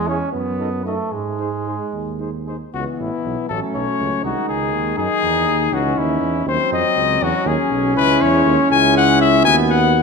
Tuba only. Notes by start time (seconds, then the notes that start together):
Already playing: E2
0.34 F#2
1.13 G#2
1.94 D#2
2.74 C#2
2.99 A1
3.25 B1
3.50 A1
3.75 B1
4.00 C#2
4.24 C2
4.48 C#2
4.74 D#2
4.97 F#2
5.22 E2
5.48 D#2
5.72 C#2
5.97 D#2
6.21 E2
6.46 D#2
6.72 F2
6.96 C#2
7.21 E2
7.45 D#2
7.71 B1
7.96 C#2
8.21 E2
8.46 D#2
8.71 C#2
9.45 D#2